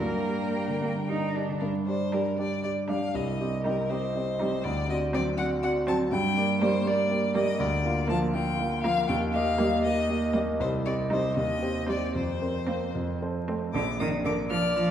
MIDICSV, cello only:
0, 0, Header, 1, 2, 480
1, 0, Start_track
1, 0, Key_signature, -2, "minor"
1, 0, Tempo, 534759
1, 13, Time_signature, 6, 3, 24, 8
1, 1452, Tempo, 508475
1, 3372, Tempo, 495868
1, 7190, Key_signature, -2, "major"
1, 10092, Tempo, 524476
1, 12972, Tempo, 508906
1, 14073, End_track
2, 0, Start_track
2, 0, Title_t, "Cello"
2, 0, Program_c, 0, 42
2, 18, Note_on_c, 0, 58, 43
2, 689, Note_off_c, 0, 58, 0
2, 734, Note_on_c, 0, 58, 41
2, 806, Note_off_c, 0, 58, 0
2, 971, Note_on_c, 0, 63, 49
2, 1213, Note_on_c, 0, 62, 40
2, 1226, Note_off_c, 0, 63, 0
2, 1450, Note_off_c, 0, 62, 0
2, 1939, Note_on_c, 0, 55, 56
2, 2120, Note_off_c, 0, 55, 0
2, 2654, Note_on_c, 0, 55, 55
2, 2832, Note_off_c, 0, 55, 0
2, 3376, Note_on_c, 0, 55, 61
2, 3555, Note_off_c, 0, 55, 0
2, 4113, Note_on_c, 0, 55, 62
2, 4284, Note_off_c, 0, 55, 0
2, 4831, Note_on_c, 0, 54, 64
2, 5003, Note_off_c, 0, 54, 0
2, 5538, Note_on_c, 0, 54, 67
2, 5710, Note_off_c, 0, 54, 0
2, 6242, Note_on_c, 0, 55, 72
2, 6416, Note_off_c, 0, 55, 0
2, 6948, Note_on_c, 0, 55, 72
2, 7128, Note_off_c, 0, 55, 0
2, 7676, Note_on_c, 0, 53, 77
2, 7854, Note_off_c, 0, 53, 0
2, 8388, Note_on_c, 0, 53, 68
2, 8572, Note_off_c, 0, 53, 0
2, 9113, Note_on_c, 0, 55, 71
2, 9299, Note_off_c, 0, 55, 0
2, 9845, Note_on_c, 0, 55, 68
2, 10028, Note_off_c, 0, 55, 0
2, 10558, Note_on_c, 0, 55, 63
2, 10734, Note_off_c, 0, 55, 0
2, 11275, Note_on_c, 0, 55, 58
2, 11455, Note_off_c, 0, 55, 0
2, 11998, Note_on_c, 0, 58, 61
2, 12179, Note_off_c, 0, 58, 0
2, 12739, Note_on_c, 0, 57, 56
2, 12915, Note_off_c, 0, 57, 0
2, 12975, Note_on_c, 0, 50, 75
2, 13051, Note_off_c, 0, 50, 0
2, 13221, Note_on_c, 0, 51, 73
2, 13296, Note_off_c, 0, 51, 0
2, 13451, Note_on_c, 0, 50, 73
2, 13527, Note_off_c, 0, 50, 0
2, 13689, Note_on_c, 0, 53, 81
2, 13765, Note_off_c, 0, 53, 0
2, 13927, Note_on_c, 0, 53, 74
2, 14073, Note_off_c, 0, 53, 0
2, 14073, End_track
0, 0, End_of_file